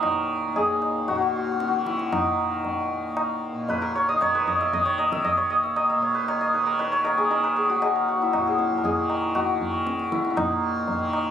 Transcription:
Already playing: D#2 A#2 D#3 C#4 D#4 F#4 G#4 A#4 B4
0.03 tabla na, tabla ge
0.47 D#2
0.56 G#4, tabla tin, tabla ge
0.82 tabla na
1.08 A#2 F#4, tabla tin, tabla ge
1.15 F#4
1.22 F#4
1.29 F#4
1.36 F#4
1.44 F#4
1.52 F#4
1.60 F#4, tabla te
1.68 D#3 F#4
1.73 F#4, tabla te
1.86 E4, tabla ke
1.99 tabla te
2.12 D#4, tabla na, tabla ge
2.32 D#3
2.65 tabla tin, tabla ge
2.91 D#2
3.17 tabla na
3.52 A#2
3.69 B4, tabla tin, tabla ge
3.82 A#4
3.95 C#5
4.09 D#5
4.13 D#3
4.21 C#5, tabla na, tabla ge
4.35 B4
4.47 D#5, tabla ge
4.61 E5
4.73 D#3 D#5, tabla tin, tabla ge
4.86 C#5
4.98 D#5, tabla na
5.12 E5, tabla ke
5.25 D#5, tabla tin, tabla ge
5.34 D#2 C#5
5.50 D#5
5.64 E5
5.76 D#5, tabla na
5.90 E5
5.95 A#2
6.02 C#5
6.15 B4
6.28 C#5, tabla na
6.41 D#5
6.54 D#3 B4
6.67 A#4
6.79 B4, tabla tin
6.92 C#5
7.04 A#4, tabla na
7.16 D#3 G#4
7.31 A#4, tabla tin
7.44 B4
7.56 G#4
7.70 F#4
7.75 D#2
7.82 G#4, tabla na
7.96 A#4
8.08 F#4
8.22 E4
8.33 A#2 F#4, tabla na, tabla ge
8.47 G#4
8.59 tabla te
8.72 tabla ge
8.78 A#4
8.84 G#4, tabla tin, tabla ge
8.94 D#3
9.10 tabla na
9.35 F#4, tabla na, tabla ge
9.55 D#3
9.61 tabla ge
9.87 tabla te
9.99 tabla te
10.12 D#2 E4, tabla ke
10.25 tabla te
10.30 E4
10.36 A#2 D#4, tabla na, tabla ge
10.88 tabla tin, tabla ge
10.96 D#3
11.13 tabla na

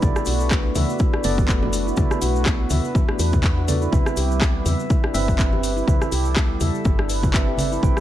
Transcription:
Already playing: D4
0.02 B1 A3 B3 E4 F#4 A4 B4 D5, kick, high conga, cabasa
0.16 cross-stick, cabasa
0.25 B1 F#4, open hi-hat, cabasa
0.40 cabasa
0.51 B3, kick, cross-stick, clap, cabasa
0.75 D2 E5, open hi-hat, high conga, low conga, cabasa
0.90 cabasa
0.99 E4, kick, high conga, cabasa
1.13 D4, cross-stick
1.24 F#1 B3 A4 B4 D5, open hi-hat, high conga, cabasa
1.38 kick, low conga, cabasa
1.48 kick, clap, cabasa
1.62 F#4, low conga
1.73 open hi-hat, cabasa
1.86 E4, cabasa
1.97 B1 B3 E4 A4 D5, kick, high conga, cabasa
2.11 cross-stick, cabasa
2.22 B1 F#4, open hi-hat, cabasa
2.36 cabasa
2.46 B3, kick, cross-stick, clap, cabasa
2.70 D2 E5, open hi-hat, high conga, low conga, cabasa
2.85 cabasa
2.95 E4, kick, high conga, low conga, cabasa
3.09 D4, cross-stick
3.19 E2 B4, open hi-hat, cabasa
3.33 kick, high conga, cabasa
3.44 kick, clap, cabasa
3.58 F#4
3.68 B3 A4 D5, open hi-hat, high conga, cabasa
3.82 E4, cabasa
3.92 C2 G3 C4 E4 B4 E5, kick, high conga, cabasa
4.06 cross-stick, cabasa
4.17 C2 G4, open hi-hat, cabasa
4.31 cabasa
4.41 B3, kick, cross-stick, clap, cabasa
4.65 E2 E5, open hi-hat, high conga, low conga, cabasa
4.79 cabasa
4.90 E4, kick, high conga, cabasa
5.04 D4, cross-stick
5.14 G1 C4 B4 E5, open hi-hat, high conga, cabasa
5.28 kick, low conga, cabasa
5.39 kick, clap, cabasa
5.53 G4, low conga
5.63 open hi-hat, cabasa
5.77 E4, cabasa
5.87 C2 C4 E4 A4 B4 E5, kick, high conga, cabasa
6.02 cross-stick, cabasa
6.12 C2 G4, open hi-hat, cabasa
6.25 cabasa
6.36 B3, kick, cross-stick, clap, cabasa
6.60 E2 E5, open hi-hat, high conga, low conga, cabasa
6.75 cabasa
6.85 G1 E4, kick, high conga, low conga, cabasa
6.99 D4, cross-stick
7.09 B4, open hi-hat, cabasa
7.23 kick, high conga, cabasa
7.34 C4 B4 E5, kick, clap, cabasa
7.48 G4
7.57 open hi-hat, high conga, cabasa
7.72 E4, cabasa
7.83 A1 C4 E4 B4 G5, kick, high conga, cabasa
7.97 cross-stick

